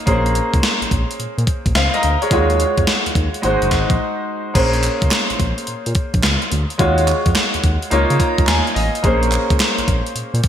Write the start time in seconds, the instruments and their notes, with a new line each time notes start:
0.06 analog synth bass A#1, grand piano A#3 C#4 G#4 C5, kick, closed hi-hat
0.26 closed hi-hat
0.35 closed hi-hat
0.54 analog synth bass C#2, kick, closed hi-hat
0.63 snare, closed hi-hat
0.82 analog synth bass A#1, closed hi-hat
0.91 analog synth bass A#1, kick, closed hi-hat
1.11 closed hi-hat
1.20 analog synth bass A#2, closed hi-hat
1.38 analog synth bass A#2, closed hi-hat
1.47 kick, closed hi-hat
1.66 analog synth bass A#1, kick, closed hi-hat
1.75 analog synth bass C#2, grand piano C5 F5, snare, closed hi-hat
1.94 grand piano A#4 D#5, closed hi-hat
2.03 analog synth bass D2, closed hi-hat
2.22 grand piano G#4 C#5, closed hi-hat
2.31 analog synth bass D#2, grand piano G#3 F4 F#4 C#5, kick, closed hi-hat
2.50 closed hi-hat
2.60 closed hi-hat
2.77 analog synth bass F2, kick, closed hi-hat
2.87 snare, closed hi-hat
3.06 analog synth bass D#2, closed hi-hat
3.15 analog synth bass D#2, kick, closed hi-hat
3.34 closed hi-hat
3.42 analog synth bass G#1, grand piano G#3 D#4 F#4 C5, closed hi-hat
3.62 analog synth bass F#1, closed hi-hat
3.71 analog synth bass G#1, kick, snare, closed hi-hat
3.90 analog synth bass A#1, kick, closed hi-hat
4.54 analog synth bass A#1, grand piano A#3 C#4 G#4 C5, kick, closed hi-hat, crash
4.73 closed hi-hat
4.83 clap, closed hi-hat
5.02 analog synth bass C#2, kick, closed hi-hat
5.11 snare, clap, closed hi-hat
5.30 analog synth bass A#1, closed hi-hat
5.40 analog synth bass A#1, kick, closed hi-hat
5.58 closed hi-hat
5.67 analog synth bass A#2, closed hi-hat
5.86 analog synth bass A#2, closed hi-hat
5.95 kick, closed hi-hat
6.14 analog synth bass A#1, kick, closed hi-hat
6.23 analog synth bass C#2, snare, clap, closed hi-hat
6.42 closed hi-hat
6.52 analog synth bass D2, closed hi-hat
6.70 closed hi-hat
6.78 analog synth bass D#2, grand piano G#3 F4 F#4 C#5, kick, closed hi-hat
6.98 closed hi-hat
7.07 clap, closed hi-hat
7.26 analog synth bass F2, kick, closed hi-hat
7.35 snare, clap, closed hi-hat
7.54 analog synth bass D#2, closed hi-hat
7.63 analog synth bass D#2, kick, closed hi-hat
7.82 closed hi-hat
7.90 analog synth bass C#2, grand piano A#3 D#4 F4 C#5, closed hi-hat
8.10 analog synth bass C#3, closed hi-hat
8.20 grand piano A#5, kick, closed hi-hat
8.38 analog synth bass C#2, kick, closed hi-hat
8.47 analog synth bass D#2, grand piano G#5, snare, clap, closed hi-hat
8.67 closed hi-hat
8.75 analog synth bass A1, grand piano D#5, open hi-hat
8.95 closed hi-hat
9.03 analog synth bass A#1, grand piano A#3 C#4 G#4 C5, kick, closed hi-hat
9.23 closed hi-hat
9.32 clap, closed hi-hat
9.50 analog synth bass C#2, kick, closed hi-hat
9.60 snare, clap, closed hi-hat
9.78 analog synth bass A#1, closed hi-hat
9.88 analog synth bass A#1, kick, closed hi-hat
10.06 closed hi-hat
10.16 analog synth bass A#2, closed hi-hat
10.34 analog synth bass A#2, closed hi-hat
10.43 kick, closed hi-hat